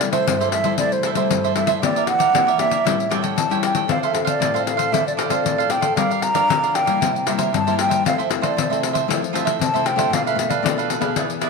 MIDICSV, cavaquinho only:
0, 0, Header, 1, 3, 480
1, 0, Start_track
1, 0, Tempo, 518583
1, 1693, Time_signature, 4, 2, 24, 8
1, 10642, End_track
2, 0, Start_track
2, 0, Title_t, "Cavaquinho"
2, 0, Program_c, 0, 24
2, 113, Note_on_c, 0, 76, 67
2, 123, Note_on_c, 0, 72, 56
2, 127, Note_on_c, 0, 69, 59
2, 233, Note_off_c, 0, 76, 0
2, 238, Note_off_c, 0, 72, 0
2, 240, Note_off_c, 0, 69, 0
2, 247, Note_on_c, 0, 64, 45
2, 251, Note_on_c, 0, 69, 48
2, 259, Note_on_c, 0, 72, 47
2, 259, Note_on_c, 0, 76, 56
2, 361, Note_off_c, 0, 64, 0
2, 362, Note_off_c, 0, 69, 0
2, 363, Note_off_c, 0, 76, 0
2, 366, Note_off_c, 0, 72, 0
2, 374, Note_on_c, 0, 76, 75
2, 381, Note_on_c, 0, 72, 61
2, 390, Note_on_c, 0, 69, 54
2, 577, Note_off_c, 0, 76, 0
2, 588, Note_on_c, 0, 76, 69
2, 590, Note_off_c, 0, 72, 0
2, 596, Note_off_c, 0, 69, 0
2, 601, Note_on_c, 0, 72, 65
2, 607, Note_on_c, 0, 69, 57
2, 711, Note_off_c, 0, 76, 0
2, 717, Note_off_c, 0, 72, 0
2, 720, Note_off_c, 0, 69, 0
2, 732, Note_on_c, 0, 64, 51
2, 737, Note_on_c, 0, 69, 50
2, 743, Note_on_c, 0, 72, 52
2, 746, Note_on_c, 0, 76, 53
2, 843, Note_off_c, 0, 64, 0
2, 845, Note_off_c, 0, 69, 0
2, 848, Note_off_c, 0, 72, 0
2, 850, Note_off_c, 0, 76, 0
2, 964, Note_on_c, 0, 64, 63
2, 972, Note_on_c, 0, 69, 71
2, 976, Note_on_c, 0, 72, 82
2, 982, Note_on_c, 0, 76, 83
2, 1063, Note_off_c, 0, 76, 0
2, 1071, Note_off_c, 0, 72, 0
2, 1074, Note_on_c, 0, 76, 60
2, 1077, Note_off_c, 0, 69, 0
2, 1079, Note_off_c, 0, 64, 0
2, 1082, Note_on_c, 0, 72, 57
2, 1088, Note_on_c, 0, 69, 54
2, 1314, Note_off_c, 0, 76, 0
2, 1318, Note_off_c, 0, 72, 0
2, 1321, Note_off_c, 0, 69, 0
2, 1334, Note_on_c, 0, 76, 72
2, 1345, Note_on_c, 0, 72, 66
2, 1350, Note_on_c, 0, 69, 60
2, 1429, Note_off_c, 0, 69, 0
2, 1437, Note_off_c, 0, 72, 0
2, 1439, Note_on_c, 0, 64, 49
2, 1440, Note_on_c, 0, 69, 50
2, 1444, Note_off_c, 0, 76, 0
2, 1448, Note_on_c, 0, 72, 54
2, 1455, Note_on_c, 0, 76, 55
2, 1539, Note_off_c, 0, 76, 0
2, 1547, Note_off_c, 0, 72, 0
2, 1550, Note_on_c, 0, 76, 76
2, 1557, Note_off_c, 0, 64, 0
2, 1557, Note_off_c, 0, 69, 0
2, 1558, Note_on_c, 0, 72, 54
2, 1568, Note_on_c, 0, 69, 50
2, 1672, Note_off_c, 0, 76, 0
2, 1676, Note_off_c, 0, 72, 0
2, 1681, Note_off_c, 0, 69, 0
2, 1684, Note_on_c, 0, 67, 51
2, 1690, Note_on_c, 0, 70, 52
2, 1697, Note_on_c, 0, 76, 48
2, 1698, Note_on_c, 0, 74, 51
2, 1799, Note_off_c, 0, 67, 0
2, 1802, Note_off_c, 0, 70, 0
2, 1804, Note_off_c, 0, 74, 0
2, 1805, Note_off_c, 0, 76, 0
2, 1815, Note_on_c, 0, 74, 70
2, 1824, Note_on_c, 0, 76, 64
2, 1830, Note_on_c, 0, 70, 56
2, 1913, Note_off_c, 0, 70, 0
2, 1915, Note_off_c, 0, 76, 0
2, 1920, Note_off_c, 0, 74, 0
2, 2025, Note_on_c, 0, 74, 72
2, 2039, Note_on_c, 0, 76, 62
2, 2043, Note_on_c, 0, 70, 58
2, 2150, Note_off_c, 0, 74, 0
2, 2156, Note_off_c, 0, 76, 0
2, 2158, Note_off_c, 0, 70, 0
2, 2165, Note_on_c, 0, 67, 44
2, 2172, Note_on_c, 0, 70, 51
2, 2173, Note_on_c, 0, 76, 51
2, 2180, Note_on_c, 0, 74, 56
2, 2273, Note_off_c, 0, 74, 0
2, 2280, Note_off_c, 0, 67, 0
2, 2283, Note_off_c, 0, 70, 0
2, 2283, Note_off_c, 0, 76, 0
2, 2284, Note_on_c, 0, 74, 75
2, 2296, Note_on_c, 0, 76, 71
2, 2303, Note_on_c, 0, 70, 61
2, 2490, Note_off_c, 0, 74, 0
2, 2501, Note_off_c, 0, 76, 0
2, 2501, Note_on_c, 0, 74, 65
2, 2509, Note_off_c, 0, 70, 0
2, 2512, Note_on_c, 0, 76, 61
2, 2520, Note_on_c, 0, 70, 51
2, 2628, Note_off_c, 0, 74, 0
2, 2633, Note_off_c, 0, 76, 0
2, 2637, Note_off_c, 0, 70, 0
2, 2641, Note_on_c, 0, 67, 47
2, 2652, Note_on_c, 0, 69, 52
2, 2654, Note_on_c, 0, 73, 55
2, 2659, Note_on_c, 0, 79, 48
2, 2757, Note_off_c, 0, 67, 0
2, 2763, Note_off_c, 0, 69, 0
2, 2764, Note_off_c, 0, 73, 0
2, 2767, Note_off_c, 0, 79, 0
2, 2874, Note_on_c, 0, 67, 68
2, 2879, Note_on_c, 0, 69, 68
2, 2886, Note_on_c, 0, 73, 77
2, 2890, Note_on_c, 0, 79, 80
2, 2972, Note_off_c, 0, 79, 0
2, 2977, Note_off_c, 0, 73, 0
2, 2983, Note_on_c, 0, 79, 64
2, 2984, Note_off_c, 0, 69, 0
2, 2988, Note_on_c, 0, 73, 65
2, 2994, Note_off_c, 0, 67, 0
2, 2995, Note_on_c, 0, 69, 56
2, 3228, Note_off_c, 0, 79, 0
2, 3231, Note_off_c, 0, 73, 0
2, 3235, Note_off_c, 0, 69, 0
2, 3251, Note_on_c, 0, 79, 72
2, 3260, Note_on_c, 0, 73, 60
2, 3270, Note_on_c, 0, 69, 60
2, 3353, Note_off_c, 0, 69, 0
2, 3358, Note_on_c, 0, 67, 48
2, 3359, Note_off_c, 0, 73, 0
2, 3363, Note_off_c, 0, 79, 0
2, 3364, Note_on_c, 0, 69, 53
2, 3370, Note_on_c, 0, 73, 55
2, 3374, Note_on_c, 0, 79, 58
2, 3462, Note_off_c, 0, 79, 0
2, 3469, Note_off_c, 0, 73, 0
2, 3473, Note_on_c, 0, 79, 65
2, 3475, Note_off_c, 0, 69, 0
2, 3476, Note_off_c, 0, 67, 0
2, 3480, Note_on_c, 0, 73, 59
2, 3487, Note_on_c, 0, 69, 57
2, 3594, Note_off_c, 0, 79, 0
2, 3597, Note_off_c, 0, 73, 0
2, 3600, Note_off_c, 0, 69, 0
2, 3610, Note_on_c, 0, 62, 45
2, 3617, Note_on_c, 0, 69, 54
2, 3622, Note_on_c, 0, 72, 51
2, 3626, Note_on_c, 0, 77, 58
2, 3717, Note_off_c, 0, 77, 0
2, 3722, Note_off_c, 0, 62, 0
2, 3725, Note_off_c, 0, 69, 0
2, 3726, Note_off_c, 0, 72, 0
2, 3729, Note_on_c, 0, 77, 65
2, 3737, Note_on_c, 0, 72, 72
2, 3746, Note_on_c, 0, 69, 59
2, 3820, Note_off_c, 0, 69, 0
2, 3824, Note_off_c, 0, 77, 0
2, 3826, Note_off_c, 0, 72, 0
2, 3930, Note_on_c, 0, 77, 75
2, 3941, Note_on_c, 0, 72, 65
2, 3948, Note_on_c, 0, 69, 55
2, 4062, Note_off_c, 0, 77, 0
2, 4067, Note_off_c, 0, 72, 0
2, 4071, Note_off_c, 0, 69, 0
2, 4073, Note_on_c, 0, 62, 51
2, 4083, Note_on_c, 0, 69, 53
2, 4086, Note_on_c, 0, 72, 52
2, 4094, Note_on_c, 0, 77, 56
2, 4191, Note_off_c, 0, 77, 0
2, 4193, Note_off_c, 0, 62, 0
2, 4198, Note_off_c, 0, 69, 0
2, 4200, Note_off_c, 0, 72, 0
2, 4202, Note_on_c, 0, 77, 76
2, 4211, Note_on_c, 0, 72, 64
2, 4217, Note_on_c, 0, 69, 62
2, 4404, Note_off_c, 0, 77, 0
2, 4413, Note_off_c, 0, 72, 0
2, 4415, Note_on_c, 0, 77, 80
2, 4422, Note_off_c, 0, 69, 0
2, 4424, Note_on_c, 0, 72, 62
2, 4433, Note_on_c, 0, 69, 54
2, 4545, Note_off_c, 0, 77, 0
2, 4549, Note_off_c, 0, 72, 0
2, 4554, Note_off_c, 0, 69, 0
2, 4560, Note_on_c, 0, 62, 55
2, 4567, Note_on_c, 0, 69, 52
2, 4574, Note_on_c, 0, 72, 50
2, 4579, Note_on_c, 0, 77, 48
2, 4677, Note_off_c, 0, 62, 0
2, 4681, Note_off_c, 0, 69, 0
2, 4684, Note_off_c, 0, 72, 0
2, 4687, Note_off_c, 0, 77, 0
2, 4786, Note_on_c, 0, 62, 71
2, 4793, Note_on_c, 0, 69, 68
2, 4797, Note_on_c, 0, 72, 69
2, 4804, Note_on_c, 0, 77, 76
2, 4897, Note_off_c, 0, 77, 0
2, 4906, Note_off_c, 0, 72, 0
2, 4908, Note_on_c, 0, 77, 71
2, 4910, Note_off_c, 0, 62, 0
2, 4912, Note_off_c, 0, 69, 0
2, 4917, Note_on_c, 0, 72, 59
2, 4923, Note_on_c, 0, 69, 51
2, 5151, Note_off_c, 0, 77, 0
2, 5156, Note_off_c, 0, 72, 0
2, 5159, Note_off_c, 0, 69, 0
2, 5167, Note_on_c, 0, 77, 80
2, 5178, Note_on_c, 0, 72, 68
2, 5182, Note_on_c, 0, 69, 61
2, 5273, Note_off_c, 0, 69, 0
2, 5274, Note_off_c, 0, 72, 0
2, 5276, Note_on_c, 0, 62, 53
2, 5281, Note_off_c, 0, 77, 0
2, 5284, Note_on_c, 0, 69, 55
2, 5285, Note_on_c, 0, 72, 57
2, 5294, Note_on_c, 0, 77, 52
2, 5367, Note_off_c, 0, 77, 0
2, 5375, Note_off_c, 0, 72, 0
2, 5378, Note_on_c, 0, 77, 66
2, 5381, Note_off_c, 0, 69, 0
2, 5386, Note_on_c, 0, 72, 57
2, 5392, Note_on_c, 0, 69, 55
2, 5395, Note_off_c, 0, 62, 0
2, 5506, Note_off_c, 0, 77, 0
2, 5510, Note_off_c, 0, 72, 0
2, 5513, Note_off_c, 0, 69, 0
2, 5524, Note_on_c, 0, 67, 45
2, 5530, Note_on_c, 0, 70, 49
2, 5534, Note_on_c, 0, 74, 56
2, 5540, Note_on_c, 0, 77, 49
2, 5639, Note_off_c, 0, 67, 0
2, 5641, Note_off_c, 0, 77, 0
2, 5642, Note_off_c, 0, 70, 0
2, 5644, Note_off_c, 0, 74, 0
2, 5652, Note_on_c, 0, 77, 72
2, 5660, Note_on_c, 0, 74, 62
2, 5665, Note_on_c, 0, 70, 52
2, 5749, Note_off_c, 0, 74, 0
2, 5753, Note_off_c, 0, 70, 0
2, 5755, Note_off_c, 0, 77, 0
2, 5870, Note_on_c, 0, 77, 73
2, 5878, Note_on_c, 0, 74, 70
2, 5891, Note_on_c, 0, 70, 56
2, 5992, Note_off_c, 0, 77, 0
2, 5996, Note_off_c, 0, 74, 0
2, 6002, Note_off_c, 0, 70, 0
2, 6008, Note_on_c, 0, 67, 49
2, 6017, Note_on_c, 0, 70, 50
2, 6023, Note_on_c, 0, 74, 51
2, 6027, Note_on_c, 0, 77, 49
2, 6121, Note_off_c, 0, 67, 0
2, 6126, Note_off_c, 0, 70, 0
2, 6126, Note_off_c, 0, 77, 0
2, 6129, Note_off_c, 0, 74, 0
2, 6137, Note_on_c, 0, 77, 66
2, 6143, Note_on_c, 0, 74, 60
2, 6150, Note_on_c, 0, 70, 59
2, 6335, Note_off_c, 0, 77, 0
2, 6338, Note_off_c, 0, 74, 0
2, 6346, Note_on_c, 0, 77, 69
2, 6349, Note_off_c, 0, 70, 0
2, 6349, Note_on_c, 0, 74, 63
2, 6361, Note_on_c, 0, 70, 56
2, 6470, Note_off_c, 0, 77, 0
2, 6472, Note_off_c, 0, 74, 0
2, 6478, Note_off_c, 0, 70, 0
2, 6490, Note_on_c, 0, 64, 48
2, 6497, Note_on_c, 0, 70, 47
2, 6501, Note_on_c, 0, 72, 51
2, 6504, Note_on_c, 0, 76, 55
2, 6602, Note_off_c, 0, 64, 0
2, 6606, Note_off_c, 0, 70, 0
2, 6608, Note_off_c, 0, 72, 0
2, 6609, Note_off_c, 0, 76, 0
2, 6721, Note_on_c, 0, 64, 68
2, 6722, Note_on_c, 0, 70, 70
2, 6729, Note_on_c, 0, 72, 82
2, 6733, Note_on_c, 0, 76, 82
2, 6814, Note_off_c, 0, 76, 0
2, 6821, Note_off_c, 0, 72, 0
2, 6825, Note_on_c, 0, 76, 63
2, 6827, Note_off_c, 0, 70, 0
2, 6832, Note_on_c, 0, 72, 58
2, 6838, Note_off_c, 0, 64, 0
2, 6838, Note_on_c, 0, 70, 49
2, 7070, Note_off_c, 0, 76, 0
2, 7073, Note_off_c, 0, 72, 0
2, 7076, Note_off_c, 0, 70, 0
2, 7097, Note_on_c, 0, 76, 75
2, 7104, Note_on_c, 0, 72, 69
2, 7112, Note_on_c, 0, 70, 57
2, 7196, Note_off_c, 0, 70, 0
2, 7199, Note_on_c, 0, 64, 49
2, 7204, Note_off_c, 0, 72, 0
2, 7206, Note_off_c, 0, 76, 0
2, 7207, Note_on_c, 0, 70, 48
2, 7215, Note_on_c, 0, 72, 49
2, 7217, Note_on_c, 0, 76, 53
2, 7288, Note_off_c, 0, 76, 0
2, 7299, Note_on_c, 0, 76, 64
2, 7302, Note_off_c, 0, 72, 0
2, 7307, Note_off_c, 0, 70, 0
2, 7313, Note_on_c, 0, 72, 62
2, 7317, Note_off_c, 0, 64, 0
2, 7318, Note_on_c, 0, 70, 53
2, 7427, Note_off_c, 0, 76, 0
2, 7434, Note_off_c, 0, 72, 0
2, 7436, Note_off_c, 0, 70, 0
2, 7450, Note_on_c, 0, 65, 51
2, 7455, Note_on_c, 0, 69, 54
2, 7458, Note_on_c, 0, 72, 54
2, 7466, Note_on_c, 0, 76, 54
2, 7561, Note_off_c, 0, 76, 0
2, 7563, Note_off_c, 0, 65, 0
2, 7565, Note_off_c, 0, 69, 0
2, 7567, Note_off_c, 0, 72, 0
2, 7572, Note_on_c, 0, 76, 69
2, 7580, Note_on_c, 0, 72, 68
2, 7590, Note_on_c, 0, 69, 60
2, 7676, Note_off_c, 0, 72, 0
2, 7677, Note_off_c, 0, 69, 0
2, 7684, Note_off_c, 0, 76, 0
2, 7789, Note_on_c, 0, 76, 74
2, 7795, Note_on_c, 0, 72, 67
2, 7805, Note_on_c, 0, 69, 62
2, 7912, Note_off_c, 0, 76, 0
2, 7915, Note_off_c, 0, 72, 0
2, 7920, Note_off_c, 0, 69, 0
2, 7926, Note_on_c, 0, 65, 45
2, 7932, Note_on_c, 0, 69, 46
2, 7933, Note_on_c, 0, 72, 50
2, 7944, Note_on_c, 0, 76, 53
2, 8040, Note_off_c, 0, 65, 0
2, 8040, Note_off_c, 0, 76, 0
2, 8043, Note_off_c, 0, 69, 0
2, 8044, Note_off_c, 0, 72, 0
2, 8051, Note_on_c, 0, 76, 72
2, 8061, Note_on_c, 0, 72, 60
2, 8069, Note_on_c, 0, 69, 53
2, 8255, Note_off_c, 0, 76, 0
2, 8264, Note_off_c, 0, 72, 0
2, 8267, Note_on_c, 0, 76, 73
2, 8274, Note_off_c, 0, 69, 0
2, 8275, Note_on_c, 0, 72, 68
2, 8285, Note_on_c, 0, 69, 57
2, 8391, Note_off_c, 0, 76, 0
2, 8395, Note_off_c, 0, 72, 0
2, 8400, Note_off_c, 0, 69, 0
2, 8412, Note_on_c, 0, 65, 49
2, 8416, Note_on_c, 0, 69, 50
2, 8422, Note_on_c, 0, 72, 49
2, 8425, Note_on_c, 0, 76, 53
2, 8524, Note_off_c, 0, 65, 0
2, 8526, Note_off_c, 0, 69, 0
2, 8529, Note_off_c, 0, 72, 0
2, 8530, Note_off_c, 0, 76, 0
2, 8635, Note_on_c, 0, 65, 74
2, 8643, Note_on_c, 0, 69, 79
2, 8644, Note_on_c, 0, 72, 70
2, 8654, Note_on_c, 0, 76, 85
2, 8736, Note_off_c, 0, 76, 0
2, 8744, Note_off_c, 0, 72, 0
2, 8747, Note_on_c, 0, 76, 69
2, 8755, Note_off_c, 0, 65, 0
2, 8755, Note_off_c, 0, 69, 0
2, 8755, Note_on_c, 0, 72, 54
2, 8766, Note_on_c, 0, 69, 60
2, 8991, Note_off_c, 0, 76, 0
2, 8995, Note_off_c, 0, 72, 0
2, 9000, Note_off_c, 0, 69, 0
2, 9012, Note_on_c, 0, 76, 78
2, 9026, Note_on_c, 0, 72, 66
2, 9031, Note_on_c, 0, 69, 60
2, 9113, Note_off_c, 0, 69, 0
2, 9115, Note_off_c, 0, 72, 0
2, 9117, Note_on_c, 0, 65, 47
2, 9123, Note_off_c, 0, 76, 0
2, 9124, Note_on_c, 0, 69, 51
2, 9127, Note_on_c, 0, 72, 53
2, 9136, Note_on_c, 0, 76, 48
2, 9222, Note_off_c, 0, 76, 0
2, 9232, Note_off_c, 0, 72, 0
2, 9233, Note_on_c, 0, 76, 65
2, 9236, Note_off_c, 0, 65, 0
2, 9240, Note_off_c, 0, 69, 0
2, 9243, Note_on_c, 0, 72, 62
2, 9250, Note_on_c, 0, 69, 54
2, 9354, Note_off_c, 0, 76, 0
2, 9359, Note_off_c, 0, 72, 0
2, 9362, Note_off_c, 0, 69, 0
2, 9377, Note_on_c, 0, 62, 50
2, 9383, Note_on_c, 0, 69, 50
2, 9386, Note_on_c, 0, 71, 47
2, 9394, Note_on_c, 0, 77, 56
2, 9486, Note_off_c, 0, 62, 0
2, 9489, Note_off_c, 0, 69, 0
2, 9490, Note_off_c, 0, 71, 0
2, 9491, Note_off_c, 0, 77, 0
2, 9502, Note_on_c, 0, 77, 62
2, 9510, Note_on_c, 0, 71, 61
2, 9516, Note_on_c, 0, 69, 52
2, 9600, Note_off_c, 0, 69, 0
2, 9604, Note_off_c, 0, 71, 0
2, 9604, Note_off_c, 0, 77, 0
2, 9714, Note_on_c, 0, 77, 72
2, 9728, Note_on_c, 0, 71, 65
2, 9731, Note_on_c, 0, 69, 54
2, 9834, Note_off_c, 0, 77, 0
2, 9841, Note_off_c, 0, 71, 0
2, 9843, Note_off_c, 0, 69, 0
2, 9849, Note_on_c, 0, 62, 47
2, 9855, Note_on_c, 0, 69, 45
2, 9962, Note_off_c, 0, 62, 0
2, 9965, Note_off_c, 0, 69, 0
2, 9975, Note_on_c, 0, 77, 73
2, 9981, Note_on_c, 0, 71, 68
2, 9988, Note_on_c, 0, 69, 55
2, 10176, Note_off_c, 0, 77, 0
2, 10185, Note_off_c, 0, 71, 0
2, 10187, Note_on_c, 0, 77, 67
2, 10190, Note_off_c, 0, 69, 0
2, 10196, Note_on_c, 0, 71, 61
2, 10201, Note_on_c, 0, 69, 57
2, 10311, Note_off_c, 0, 77, 0
2, 10316, Note_off_c, 0, 71, 0
2, 10318, Note_off_c, 0, 69, 0
2, 10332, Note_on_c, 0, 64, 48
2, 10337, Note_on_c, 0, 68, 59
2, 10343, Note_on_c, 0, 71, 50
2, 10349, Note_on_c, 0, 74, 59
2, 10443, Note_off_c, 0, 64, 0
2, 10446, Note_off_c, 0, 68, 0
2, 10449, Note_off_c, 0, 71, 0
2, 10452, Note_off_c, 0, 74, 0
2, 10562, Note_on_c, 0, 64, 67
2, 10566, Note_on_c, 0, 68, 72
2, 10571, Note_on_c, 0, 71, 72
2, 10576, Note_on_c, 0, 74, 75
2, 10642, Note_off_c, 0, 64, 0
2, 10642, Note_off_c, 0, 68, 0
2, 10642, Note_off_c, 0, 71, 0
2, 10642, Note_off_c, 0, 74, 0
2, 10642, End_track
3, 0, Start_track
3, 0, Title_t, "Muted cavaquinho strokes"
3, 6, Note_on_c, 9, 29, 34
3, 99, Note_off_c, 9, 29, 0
3, 857, Note_on_c, 9, 29, 33
3, 949, Note_off_c, 9, 29, 0
3, 1921, Note_on_c, 9, 29, 35
3, 2014, Note_off_c, 9, 29, 0
3, 2771, Note_on_c, 9, 29, 36
3, 2864, Note_off_c, 9, 29, 0
3, 3829, Note_on_c, 9, 29, 39
3, 3921, Note_off_c, 9, 29, 0
3, 4689, Note_on_c, 9, 29, 39
3, 4782, Note_off_c, 9, 29, 0
3, 5760, Note_on_c, 9, 29, 42
3, 5852, Note_off_c, 9, 29, 0
3, 6615, Note_on_c, 9, 29, 34
3, 6708, Note_off_c, 9, 29, 0
3, 7687, Note_on_c, 9, 29, 39
3, 7779, Note_off_c, 9, 29, 0
3, 8536, Note_on_c, 9, 29, 34
3, 8629, Note_off_c, 9, 29, 0
3, 9608, Note_on_c, 9, 29, 37
3, 9701, Note_off_c, 9, 29, 0
3, 10459, Note_on_c, 9, 29, 36
3, 10551, Note_off_c, 9, 29, 0
3, 10642, End_track
0, 0, End_of_file